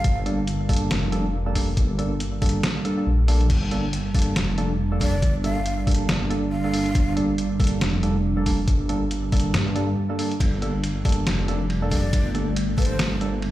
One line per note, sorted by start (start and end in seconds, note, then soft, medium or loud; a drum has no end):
0.00 3.49 G3 medium
0.00 3.53 A#3 medium
0.00 0.17 F5 medium
0.04 0.89 G1 loud
0.04 kick loud
0.04 closed hi-hat medium
0.26 0.40 G3 medium
0.26 0.40 A#3 medium
0.26 0.40 D4 medium
0.26 0.40 A4 loud
0.26 closed hi-hat medium
0.47 closed hi-hat medium
0.69 0.90 G3 medium
0.69 0.90 A#3 medium
0.69 0.90 D4 medium
0.69 0.90 A4 medium
0.69 kick loud
0.69 open hi-hat medium
0.73 closed hi-hat medium
0.76 closed hi-hat medium
0.91 1.76 F1 loud
0.91 snare loud
0.91 closed hi-hat medium
1.12 1.26 G3 medium
1.12 1.26 A#3 medium
1.12 1.26 D4 medium
1.12 1.26 A4 medium
1.12 closed hi-hat medium
1.46 1.54 G3 medium
1.46 1.54 A#3 medium
1.46 1.54 D4 medium
1.46 1.54 A4 medium
1.55 1.69 G3 medium
1.55 1.69 A#3 medium
1.55 1.69 D4 medium
1.55 1.69 A4 medium
1.55 kick medium
1.55 open hi-hat loud
1.77 2.62 G1 loud
1.77 kick loud
1.77 closed hi-hat medium
1.99 2.13 G3 medium
1.99 2.13 A#3 medium
1.99 2.13 D4 medium
1.99 2.13 A4 medium
1.99 closed hi-hat medium
2.20 closed hi-hat medium
2.42 2.62 G3 medium
2.42 2.62 A#3 medium
2.42 2.62 D4 medium
2.42 2.62 A4 medium
2.42 kick loud
2.42 open hi-hat medium
2.46 closed hi-hat medium
2.49 closed hi-hat medium
2.63 snare loud
2.63 closed hi-hat medium
2.85 2.96 G3 loud
2.85 2.96 A#3 medium
2.85 2.96 D4 medium
2.85 2.96 A4 loud
2.85 closed hi-hat medium
2.97 3.09 G3 medium
2.97 3.09 A#3 medium
2.97 3.09 D4 medium
2.97 3.09 A4 medium
3.07 3.48 A#1 loud
3.28 3.49 G3 loud
3.28 3.49 A#3 medium
3.28 3.49 D4 medium
3.28 3.49 A4 loud
3.28 open hi-hat medium
3.41 closed hi-hat soft
3.50 4.35 G1 loud
3.50 13.51 G3 medium
3.50 10.43 D4 medium
3.50 kick loud
3.50 closed hi-hat medium
3.50 crash medium
3.71 3.85 G3 medium
3.71 3.85 A#3 medium
3.71 3.85 D4 medium
3.71 3.85 A4 medium
3.71 closed hi-hat medium
3.93 closed hi-hat medium
4.14 4.35 G3 medium
4.14 4.35 A#3 medium
4.14 4.35 D4 medium
4.14 4.35 A4 medium
4.14 kick loud
4.14 open hi-hat medium
4.19 closed hi-hat medium
4.22 closed hi-hat medium
4.36 5.21 F1 loud
4.36 snare loud
4.36 closed hi-hat medium
4.58 4.72 G3 medium
4.58 4.72 A#3 medium
4.58 4.72 D4 medium
4.58 4.72 A4 medium
4.58 closed hi-hat medium
4.92 5.00 G3 medium
4.92 5.00 A#3 medium
4.92 5.00 D4 medium
4.92 5.00 A4 medium
5.01 5.15 G3 medium
5.01 5.15 A#3 medium
5.01 5.15 D4 medium
5.01 5.15 A4 medium
5.01 5.35 D5 loud
5.01 kick medium
5.01 open hi-hat medium
5.22 6.07 G1 loud
5.22 kick loud
5.22 closed hi-hat medium
5.44 5.58 G3 medium
5.44 5.58 A#3 medium
5.44 5.58 D4 medium
5.44 5.58 A4 medium
5.44 5.78 F5 loud
5.44 closed hi-hat medium
5.66 closed hi-hat medium
5.87 6.08 G3 medium
5.87 6.08 A#3 medium
5.87 6.08 D4 medium
5.87 6.08 A4 medium
5.87 kick loud
5.87 open hi-hat medium
5.91 closed hi-hat medium
5.95 closed hi-hat medium
6.09 6.94 G1 loud
6.09 snare loud
6.09 closed hi-hat medium
6.30 6.44 G3 medium
6.30 6.44 A#3 medium
6.30 6.44 D4 medium
6.30 6.44 A4 medium
6.30 closed hi-hat medium
6.52 7.13 F5 loud
6.64 6.72 G3 medium
6.64 6.72 A#3 medium
6.64 6.72 D4 medium
6.64 6.72 A4 medium
6.73 6.87 G3 medium
6.73 6.87 A#3 medium
6.73 6.87 D4 medium
6.73 6.87 A4 medium
6.73 open hi-hat loud
6.86 closed hi-hat soft
6.95 7.80 G1 loud
6.95 kick loud
6.95 closed hi-hat medium
7.17 7.31 G3 medium
7.17 7.31 A#3 medium
7.17 7.31 D4 medium
7.17 7.31 A4 medium
7.17 closed hi-hat medium
7.38 closed hi-hat medium
7.60 7.80 G3 medium
7.60 7.80 A#3 medium
7.60 7.80 D4 medium
7.60 7.80 A4 medium
7.60 kick loud
7.60 open hi-hat medium
7.64 closed hi-hat medium
7.67 closed hi-hat medium
7.81 8.66 F1 loud
7.81 snare loud
7.81 closed hi-hat medium
8.03 8.17 G3 medium
8.03 8.17 A#3 medium
8.03 8.17 D4 medium
8.03 8.17 A4 medium
8.03 closed hi-hat medium
8.37 8.45 G3 medium
8.37 8.45 A#3 medium
8.37 8.45 D4 medium
8.37 8.45 A4 medium
8.46 8.60 G3 medium
8.46 8.60 A#3 medium
8.46 8.60 D4 medium
8.46 8.60 A4 medium
8.46 kick medium
8.46 open hi-hat medium
8.68 9.53 G1 loud
8.68 kick loud
8.68 closed hi-hat medium
8.89 9.03 G3 medium
8.89 9.03 A#3 medium
8.89 9.03 D4 medium
8.89 9.03 A4 medium
8.89 closed hi-hat medium
9.11 closed hi-hat medium
9.32 9.53 G3 medium
9.32 9.53 A#3 medium
9.32 9.53 D4 medium
9.32 9.53 A4 medium
9.32 kick loud
9.32 open hi-hat medium
9.37 closed hi-hat medium
9.40 closed hi-hat medium
9.54 9.96 G2 loud
9.54 snare loud
9.54 closed hi-hat medium
9.75 9.90 G3 medium
9.75 9.90 A#3 medium
9.75 9.90 D4 medium
9.75 9.90 A4 medium
9.75 closed hi-hat medium
10.10 10.17 G3 medium
10.10 10.17 A#3 medium
10.10 10.17 D4 medium
10.10 10.17 A4 medium
10.19 10.33 G3 medium
10.19 10.33 A#3 medium
10.19 10.33 D4 medium
10.19 10.33 A4 medium
10.19 open hi-hat medium
10.31 closed hi-hat soft
10.40 11.25 G1 loud
10.40 13.51 A3 medium
10.40 kick loud
10.40 closed hi-hat medium
10.40 ride medium
10.62 10.76 G3 medium
10.62 10.76 A#3 medium
10.62 10.76 D4 medium
10.62 10.76 A4 medium
10.62 closed hi-hat medium
10.84 closed hi-hat medium
10.84 ride soft
11.05 11.26 G3 medium
11.05 11.26 A#3 medium
11.05 11.26 D4 medium
11.05 11.26 A4 medium
11.05 kick loud
11.05 open hi-hat medium
11.09 closed hi-hat medium
11.12 closed hi-hat medium
11.27 12.12 F1 loud
11.27 snare loud
11.27 closed hi-hat medium
11.27 ride medium
11.48 11.62 G3 medium
11.48 11.62 A#3 medium
11.48 11.62 D4 medium
11.48 11.62 A4 medium
11.48 closed hi-hat soft
11.70 ride soft
11.82 11.90 G3 medium
11.82 11.90 A#3 medium
11.82 11.90 D4 medium
11.82 11.90 A4 medium
11.91 12.06 G3 medium
11.91 12.06 A#3 medium
11.91 12.06 D4 medium
11.91 12.06 A4 medium
11.91 12.26 D5 loud
11.91 kick medium
11.91 open hi-hat medium
12.13 12.98 G1 medium
12.13 kick loud
12.13 closed hi-hat medium
12.13 ride medium
12.35 12.49 G3 medium
12.35 12.49 A#3 medium
12.35 12.49 D4 medium
12.35 12.49 A4 medium
12.35 closed hi-hat medium
12.56 closed hi-hat medium
12.56 ride soft
12.78 12.98 G3 medium
12.78 12.98 A#3 medium
12.78 12.98 D4 medium
12.78 12.98 A4 medium
12.78 13.12 C5 loud
12.78 kick loud
12.78 open hi-hat medium
12.82 closed hi-hat medium
12.85 closed hi-hat medium
12.99 13.51 G1 loud
12.99 snare loud
12.99 closed hi-hat medium
12.99 ride medium
13.21 13.35 G3 medium
13.21 13.35 A#3 medium
13.21 13.35 D4 medium
13.21 13.35 A4 medium
13.21 closed hi-hat medium
13.42 ride soft